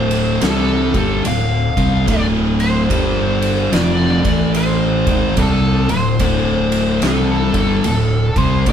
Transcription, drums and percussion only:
0.11 ride
0.41 snare, ride
0.94 kick, ride
1.25 ride
1.77 kick, ride
2.08 kick, ride
2.60 ride
2.90 kick, ride
3.42 ride
3.73 snare, ride
4.25 kick, ride
4.54 ride
5.07 kick, ride
5.37 kick, ride
5.89 ride
6.20 kick, ride
6.72 ride
7.02 snare, ride
7.54 kick, ride
7.84 ride
8.36 kick, ride
8.66 kick, ride

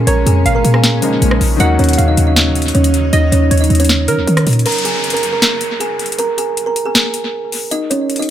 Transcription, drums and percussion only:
0.07 closed hi-hat
0.27 closed hi-hat
0.46 closed hi-hat
0.65 closed hi-hat
0.74 cross-stick
0.84 snare, closed hi-hat
1.02 closed hi-hat
1.22 closed hi-hat
1.31 cross-stick
1.41 open hi-hat
1.60 closed hi-hat
1.79 closed hi-hat
1.84 closed hi-hat
1.89 closed hi-hat
1.93 closed hi-hat
1.99 closed hi-hat
2.17 closed hi-hat
2.36 snare, closed hi-hat
2.55 closed hi-hat
2.62 closed hi-hat
2.68 closed hi-hat
2.75 closed hi-hat
2.84 closed hi-hat
2.94 closed hi-hat
3.13 closed hi-hat
3.32 closed hi-hat
3.51 closed hi-hat
3.57 closed hi-hat
3.64 closed hi-hat
3.70 closed hi-hat
3.75 closed hi-hat
3.80 closed hi-hat
3.85 closed hi-hat
3.89 snare, closed hi-hat
4.08 closed hi-hat
4.27 closed hi-hat
4.37 cross-stick, closed hi-hat
4.47 closed hi-hat, open hi-hat
4.53 closed hi-hat
4.59 closed hi-hat
4.66 closed hi-hat, crash
4.72 closed hi-hat
4.78 closed hi-hat
4.85 closed hi-hat
5.04 closed hi-hat
5.10 closed hi-hat
5.17 closed hi-hat
5.23 closed hi-hat
5.42 snare, closed hi-hat
5.61 closed hi-hat
5.81 closed hi-hat
5.99 closed hi-hat
6.06 closed hi-hat
6.12 closed hi-hat
6.19 closed hi-hat
6.38 closed hi-hat
6.57 closed hi-hat
6.76 closed hi-hat
6.95 snare, closed hi-hat
7.14 closed hi-hat
7.52 open hi-hat
7.71 closed hi-hat
7.91 closed hi-hat
8.10 closed hi-hat
8.16 closed hi-hat
8.22 closed hi-hat

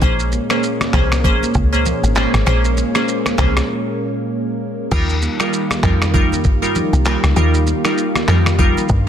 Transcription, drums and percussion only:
0.02 kick, low conga, shaker
0.19 shaker
0.32 high conga, shaker
0.50 finger snap, cross-stick, shaker
0.63 shaker
0.81 finger snap, cross-stick, high conga, shaker
0.93 kick, clap, low conga
1.12 finger snap, cross-stick, high conga, shaker
1.24 kick, low conga, shaker
1.43 high conga, shaker
1.54 kick, shaker
1.74 shaker
1.86 low conga, shaker
2.04 high conga, shaker
2.15 clap, high conga, shaker
2.34 finger snap, cross-stick, shaker
2.47 finger snap, cross-stick, low conga, shaker
2.65 shaker
2.77 high conga, shaker
2.95 finger snap, cross-stick, shaker
3.08 shaker
3.26 finger snap, cross-stick, high conga, shaker
3.38 kick, clap, low conga, shaker
3.57 finger snap, cross-stick, high conga, shaker
4.92 kick, crash, low conga, shaker
5.09 shaker
5.22 high conga, shaker
5.40 finger snap, cross-stick, shaker
5.53 shaker
5.70 finger snap, cross-stick, high conga, shaker
5.83 kick, clap, low conga
6.02 finger snap, cross-stick, high conga, shaker
6.14 kick, low conga, shaker
6.32 high conga, shaker
6.44 kick, shaker
6.63 shaker
6.75 low conga, shaker
6.93 high conga, shaker
7.05 clap, high conga, shaker
7.24 finger snap, cross-stick, shaker
7.36 low conga, shaker
7.54 shaker
7.67 high conga, shaker
7.85 finger snap, cross-stick, shaker
7.98 shaker
8.15 finger snap, cross-stick, high conga, shaker
8.28 clap, low conga
8.46 finger snap, cross-stick, high conga, shaker
8.59 kick, low conga, shaker
8.77 high conga, shaker
8.89 kick, shaker

